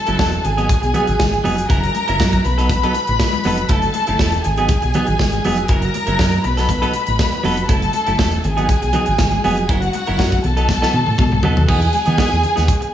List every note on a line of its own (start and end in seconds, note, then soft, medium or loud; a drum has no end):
0.00 0.43 A4 medium
0.00 0.43 A5 medium
0.07 0.17 F#1 medium
0.07 0.18 F#3 medium
0.07 0.19 C#4 medium
0.07 0.19 E4 medium
0.07 0.20 A4 medium
0.07 closed hi-hat soft
0.19 0.38 E1 loud
0.19 0.39 F#3 medium
0.19 0.32 C#4 medium
0.19 0.32 E4 medium
0.19 0.31 A4 medium
0.19 kick loud
0.19 snare loud
0.19 high conga medium
0.32 muted clean electric guitar stroke soft
0.32 closed hi-hat soft
0.44 0.74 G#1 medium
0.44 1.68 G#4 medium
0.44 1.68 G#5 medium
0.44 muted clean electric guitar stroke soft
0.44 closed hi-hat medium
0.57 0.68 F#3 medium
0.57 0.68 B3 medium
0.57 0.68 D#4 medium
0.57 0.69 G#4 medium
0.57 closed hi-hat soft
0.69 muted clean electric guitar stroke soft
0.69 kick loud
0.69 closed hi-hat medium
0.69 muted conga medium
0.82 0.92 B1 medium
0.82 muted clean electric guitar stroke soft
0.82 closed hi-hat soft
0.94 1.14 F#3 medium
0.94 1.07 B3 medium
0.94 1.07 D#4 medium
0.94 1.06 G#4 medium
0.94 closed hi-hat medium
0.94 muted conga soft
0.94 low conga medium
1.07 1.17 G#1 medium
1.07 muted clean electric guitar stroke soft
1.07 closed hi-hat soft
1.19 1.39 G#1 medium
1.19 muted clean electric guitar stroke soft
1.19 kick loud
1.19 snare loud
1.19 high conga medium
1.32 muted clean electric guitar stroke soft
1.32 closed hi-hat soft
1.32 high conga medium
1.44 1.64 F1 medium
1.44 1.64 F#3 medium
1.44 1.56 B3 medium
1.44 1.56 D#4 medium
1.44 1.55 G#4 medium
1.44 open hi-hat medium
1.56 muted clean electric guitar stroke soft
1.56 closed hi-hat medium
1.69 1.89 F#1 loud
1.69 1.89 F#3 medium
1.69 1.83 C#4 medium
1.69 1.83 E4 medium
1.69 2.43 A#4 medium
1.69 1.82 A#4 medium
1.69 2.43 A#5 medium
1.69 kick loud
1.69 closed hi-hat medium
1.83 muted clean electric guitar stroke medium
1.83 closed hi-hat soft
1.94 muted clean electric guitar stroke soft
1.94 closed hi-hat medium
1.94 muted conga medium
2.08 2.18 F#1 loud
2.08 2.18 F#3 soft
2.08 2.19 C#4 medium
2.08 2.19 E4 medium
2.08 2.20 A#4 medium
2.08 closed hi-hat soft
2.19 2.39 F#2 medium
2.19 2.39 F#3 medium
2.19 2.33 C#4 medium
2.19 2.33 E4 medium
2.19 2.32 A#4 medium
2.19 kick loud
2.19 snare loud
2.19 high conga medium
2.32 muted clean electric guitar stroke soft
2.32 kick medium
2.32 closed hi-hat soft
2.45 2.83 B1 loud
2.45 3.67 B4 medium
2.45 3.67 B5 medium
2.45 muted clean electric guitar stroke soft
2.45 closed hi-hat medium
2.58 2.68 F#3 soft
2.58 2.69 B3 medium
2.58 2.70 D#4 medium
2.58 2.70 A4 medium
2.58 closed hi-hat soft
2.69 muted clean electric guitar stroke soft
2.69 kick loud
2.69 closed hi-hat medium
2.69 muted conga medium
2.83 2.94 F#3 medium
2.83 2.95 B3 medium
2.83 2.95 D#4 medium
2.83 2.95 A4 medium
2.83 closed hi-hat soft
2.94 muted clean electric guitar stroke soft
2.94 closed hi-hat medium
2.94 muted conga soft
3.07 3.17 A1 medium
3.07 muted clean electric guitar stroke soft
3.07 closed hi-hat soft
3.19 kick medium
3.19 snare loud
3.19 high conga medium
3.32 muted clean electric guitar stroke soft
3.32 closed hi-hat soft
3.32 high conga medium
3.44 3.64 F1 medium
3.44 3.64 F#3 medium
3.44 3.58 B3 medium
3.44 3.58 D#4 medium
3.44 3.57 A4 medium
3.44 open hi-hat medium
3.57 muted clean electric guitar stroke soft
3.57 closed hi-hat medium
3.69 3.89 F#1 loud
3.69 3.89 A3 medium
3.69 3.84 C#4 medium
3.69 3.83 E4 medium
3.69 4.43 A4 medium
3.69 3.82 A4 medium
3.69 4.43 A5 medium
3.69 kick loud
3.69 closed hi-hat medium
3.82 muted clean electric guitar stroke soft
3.82 closed hi-hat soft
3.94 muted clean electric guitar stroke soft
3.94 closed hi-hat medium
3.94 muted conga medium
4.07 4.17 F#1 medium
4.07 4.18 A3 medium
4.07 4.19 C#4 medium
4.07 4.19 E4 medium
4.07 4.20 A4 medium
4.07 closed hi-hat soft
4.19 4.39 E1 medium
4.19 4.39 A3 medium
4.19 4.33 C#4 medium
4.19 4.33 E4 medium
4.19 4.32 A4 medium
4.19 kick medium
4.19 snare loud
4.19 high conga medium
4.32 muted clean electric guitar stroke soft
4.32 closed hi-hat soft
4.44 4.74 G#1 loud
4.44 5.67 G#4 medium
4.44 5.67 G#5 medium
4.44 muted clean electric guitar stroke soft
4.44 closed hi-hat medium
4.58 4.69 F#3 medium
4.58 4.70 B3 medium
4.58 4.69 D#4 medium
4.58 4.70 G#4 medium
4.58 closed hi-hat soft
4.69 muted clean electric guitar stroke soft
4.69 kick loud
4.69 closed hi-hat medium
4.69 muted conga medium
4.82 4.92 B1 medium
4.82 muted clean electric guitar stroke soft
4.82 closed hi-hat soft
4.94 5.14 F#3 medium
4.94 5.07 B3 medium
4.94 5.07 D#4 medium
4.94 5.06 G#4 medium
4.94 closed hi-hat medium
4.94 muted conga soft
4.94 low conga medium
5.07 5.17 G#1 medium
5.07 muted clean electric guitar stroke soft
5.07 closed hi-hat soft
5.19 5.39 G#1 loud
5.19 muted clean electric guitar stroke soft
5.19 kick medium
5.19 snare loud
5.19 high conga medium
5.32 muted clean electric guitar stroke soft
5.32 closed hi-hat soft
5.32 high conga medium
5.45 5.64 F1 medium
5.45 5.64 F#3 medium
5.45 5.58 B3 medium
5.45 5.57 D#4 medium
5.45 5.57 G#4 medium
5.45 open hi-hat medium
5.58 muted clean electric guitar stroke soft
5.58 closed hi-hat medium
5.68 5.89 F#1 loud
5.68 5.89 F#3 medium
5.68 5.83 C#4 medium
5.68 5.82 E4 medium
5.68 6.43 A#4 medium
5.68 5.82 A#4 medium
5.68 6.43 A#5 medium
5.68 kick loud
5.68 closed hi-hat medium
5.82 muted clean electric guitar stroke soft
5.82 closed hi-hat soft
5.94 muted clean electric guitar stroke soft
5.94 closed hi-hat medium
5.94 muted conga medium
6.07 6.17 F#1 loud
6.07 6.18 F#3 medium
6.07 6.18 C#4 medium
6.07 6.19 E4 medium
6.07 6.19 A#4 medium
6.07 closed hi-hat soft
6.19 6.38 F#2 medium
6.19 6.39 F#3 medium
6.19 6.33 C#4 medium
6.19 6.32 E4 medium
6.19 6.31 A#4 medium
6.19 kick loud
6.19 snare loud
6.19 high conga medium
6.32 muted clean electric guitar stroke soft
6.32 closed hi-hat soft
6.44 6.83 B1 loud
6.44 7.67 B4 medium
6.44 7.67 B5 medium
6.44 muted clean electric guitar stroke soft
6.44 closed hi-hat soft
6.57 6.68 F#3 soft
6.57 6.69 B3 soft
6.57 6.69 D#4 medium
6.57 6.70 A4 medium
6.57 snare soft
6.57 closed hi-hat soft
6.69 muted clean electric guitar stroke soft
6.69 kick medium
6.69 closed hi-hat medium
6.69 muted conga medium
6.82 6.92 F#3 medium
6.82 6.93 B3 medium
6.82 6.94 D#4 medium
6.82 6.94 A4 medium
6.82 closed hi-hat soft
6.93 muted clean electric guitar stroke soft
6.93 closed hi-hat medium
6.93 muted conga soft
7.07 7.17 A1 medium
7.07 muted clean electric guitar stroke soft
7.07 closed hi-hat soft
7.19 kick loud
7.19 snare loud
7.19 high conga medium
7.32 muted clean electric guitar stroke soft
7.32 closed hi-hat soft
7.32 high conga medium
7.44 7.64 F1 medium
7.44 7.63 F#3 loud
7.44 7.57 B3 medium
7.44 7.57 D#4 medium
7.44 7.56 A4 loud
7.44 open hi-hat medium
7.57 muted clean electric guitar stroke medium
7.57 closed hi-hat medium
7.68 7.88 F#1 loud
7.68 7.88 A3 medium
7.68 7.82 C#4 medium
7.68 7.82 E4 medium
7.68 8.43 A4 medium
7.68 7.81 A4 medium
7.68 8.43 A5 medium
7.68 kick loud
7.68 closed hi-hat medium
7.82 muted clean electric guitar stroke soft
7.82 closed hi-hat soft
7.93 muted clean electric guitar stroke soft
7.93 closed hi-hat medium
7.93 muted conga medium
8.07 8.17 F#1 medium
8.07 8.17 A3 soft
8.07 8.18 C#4 medium
8.07 8.18 E4 medium
8.07 8.19 A4 medium
8.07 closed hi-hat soft
8.18 8.38 E1 medium
8.18 8.38 A3 medium
8.18 8.32 C#4 medium
8.18 8.31 E4 medium
8.18 8.31 A4 medium
8.18 kick loud
8.18 snare loud
8.18 high conga medium
8.32 muted clean electric guitar stroke soft
8.32 closed hi-hat soft
8.44 8.74 G#1 loud
8.44 9.66 G#4 medium
8.44 9.66 G#5 medium
8.44 muted clean electric guitar stroke soft
8.44 closed hi-hat soft
8.57 8.68 F#3 medium
8.57 8.68 B3 medium
8.57 8.68 D#4 medium
8.57 8.69 G#4 medium
8.57 closed hi-hat soft
8.69 kick medium
8.69 closed hi-hat medium
8.69 muted conga medium
8.82 8.92 B1 medium
8.82 muted clean electric guitar stroke soft
8.82 closed hi-hat soft
8.93 9.13 F#3 medium
8.93 9.07 B3 medium
8.93 9.06 D#4 medium
8.93 9.05 G#4 medium
8.93 closed hi-hat medium
8.93 low conga medium
9.06 9.17 G#1 medium
9.06 muted clean electric guitar stroke soft
9.06 closed hi-hat soft
9.19 9.38 G#1 medium
9.19 muted clean electric guitar stroke soft
9.19 kick loud
9.19 snare loud
9.19 high conga medium
9.31 muted clean electric guitar stroke soft
9.31 closed hi-hat soft
9.31 high conga medium
9.44 9.69 F1 medium
9.44 9.63 F#3 medium
9.44 9.58 B3 medium
9.44 9.57 D#4 medium
9.44 9.56 G#4 medium
9.44 open hi-hat medium
9.57 muted clean electric guitar stroke soft
9.57 closed hi-hat medium
9.68 9.88 F#1 loud
9.68 9.88 F#3 medium
9.68 9.82 C#4 medium
9.68 9.82 E4 medium
9.68 10.42 F#4 medium
9.68 9.80 A#4 medium
9.68 10.42 F#5 medium
9.68 kick loud
9.68 closed hi-hat medium
9.82 muted clean electric guitar stroke soft
9.82 closed hi-hat soft
9.93 muted clean electric guitar stroke soft
9.93 closed hi-hat medium
9.93 muted conga medium
10.07 10.17 F#1 medium
10.07 10.18 F#3 medium
10.07 10.18 C#4 medium
10.07 10.19 E4 medium
10.07 10.19 A#4 medium
10.07 closed hi-hat soft
10.19 10.38 F#2 medium
10.19 10.38 F#3 medium
10.19 10.32 C#4 medium
10.19 10.32 E4 medium
10.19 10.31 A#4 medium
10.19 kick medium
10.19 snare loud
10.19 high conga medium
10.32 muted clean electric guitar stroke soft
10.32 kick medium
10.32 closed hi-hat soft
10.44 10.83 B1 loud
10.44 11.66 A4 medium
10.44 11.66 A5 medium
10.44 muted clean electric guitar stroke soft
10.44 closed hi-hat soft
10.44 low conga medium
10.57 10.68 F#3 soft
10.57 10.68 B3 soft
10.57 10.69 D#4 medium
10.57 10.69 A4 medium
10.57 closed hi-hat soft
10.69 muted clean electric guitar stroke soft
10.69 kick loud
10.69 snare soft
10.69 muted conga medium
10.82 10.93 F#3 medium
10.82 10.93 B3 medium
10.82 10.94 D#4 medium
10.82 10.94 A4 medium
10.82 snare medium
10.93 11.04 B2 loud
10.93 muted clean electric guitar stroke soft
10.93 high tom medium
11.07 11.17 A2 medium
11.07 muted clean electric guitar stroke soft
11.07 high tom medium
11.18 11.29 B2 loud
11.18 kick loud
11.18 mid tom medium
11.18 high conga medium
11.32 11.41 B1 medium
11.32 muted clean electric guitar stroke soft
11.32 mid tom medium
11.32 high conga medium
11.43 11.63 F#3 medium
11.43 11.56 B3 medium
11.43 11.56 D#4 medium
11.43 11.55 A4 medium
11.43 floor tom loud
11.56 11.66 D#2 medium
11.56 muted clean electric guitar stroke soft
11.56 floor tom medium
11.67 11.88 E2 medium
11.67 11.87 E3 medium
11.67 11.81 B3 medium
11.67 11.81 D#4 medium
11.67 11.80 G#4 medium
11.67 12.94 G#4 medium
11.67 12.94 G#5 medium
11.67 kick loud
11.67 crash medium
11.81 muted clean electric guitar stroke medium
11.81 closed hi-hat soft
11.93 muted clean electric guitar stroke soft
11.93 closed hi-hat medium
11.93 muted conga medium
12.06 12.16 E3 medium
12.06 12.17 E3 soft
12.06 12.17 B3 medium
12.06 12.18 D#4 medium
12.06 12.18 G#4 medium
12.06 closed hi-hat soft
12.18 12.37 E3 medium
12.18 12.31 B3 medium
12.18 12.31 D#4 medium
12.18 12.30 G#4 medium
12.18 kick loud
12.18 snare loud
12.18 high conga medium
12.31 12.41 E2 medium
12.31 muted clean electric guitar stroke soft
12.31 closed hi-hat soft
12.43 muted clean electric guitar stroke soft
12.43 closed hi-hat soft
12.43 low conga medium
12.56 12.66 D#2 medium
12.56 12.67 E3 medium
12.56 12.68 B3 medium
12.56 12.68 D#4 medium
12.56 12.68 G#4 medium
12.56 snare soft
12.56 closed hi-hat soft
12.68 muted clean electric guitar stroke soft
12.68 kick loud
12.68 closed hi-hat medium
12.68 muted conga medium
12.81 muted clean electric guitar stroke soft
12.81 closed hi-hat soft